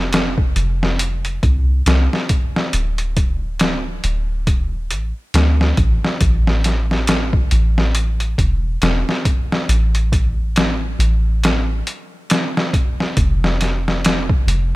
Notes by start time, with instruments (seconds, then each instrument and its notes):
Already playing: 808-style bass F1
0.13 snare, closed hi-hat
0.38 kick
0.56 808-style bass F1, closed hi-hat
0.83 snare
0.99 closed hi-hat
1.25 closed hi-hat
1.43 808-style bass C2, kick, closed hi-hat
1.86 808-style bass C2, snare, closed hi-hat
2.13 snare
2.29 kick, closed hi-hat
2.56 snare
2.73 808-style bass D1, closed hi-hat
2.98 closed hi-hat
3.17 kick, closed hi-hat
3.60 snare, closed hi-hat
4.04 808-style bass D1, closed hi-hat
4.47 kick, closed hi-hat
4.91 808-style bass A1, closed hi-hat
5.34 808-style bass D2, snare, closed hi-hat
5.61 snare
5.77 808-style bass A1, kick, closed hi-hat
6.05 snare
6.21 808-style bass A1, kick, closed hi-hat
6.47 snare
6.64 snare, closed hi-hat
6.91 snare
7.07 snare, closed hi-hat
7.33 kick
7.51 808-style bass A1, closed hi-hat
7.78 snare
7.95 closed hi-hat
8.20 closed hi-hat
8.38 808-style bass E1, kick, closed hi-hat
8.82 808-style bass E1, snare, closed hi-hat
9.09 snare
9.25 kick, closed hi-hat
9.52 snare
9.69 808-style bass A1, closed hi-hat
9.95 closed hi-hat
10.12 kick, closed hi-hat
10.56 snare, closed hi-hat
10.99 808-style bass A1, closed hi-hat
11.44 snare, closed hi-hat
11.87 closed hi-hat
12.30 snare, closed hi-hat
12.57 snare
12.73 kick, closed hi-hat
13.00 snare
13.17 808-style bass F1, kick, closed hi-hat
13.44 snare
13.61 snare, closed hi-hat
13.88 snare
14.05 snare, closed hi-hat
14.30 kick
14.47 808-style bass F1, closed hi-hat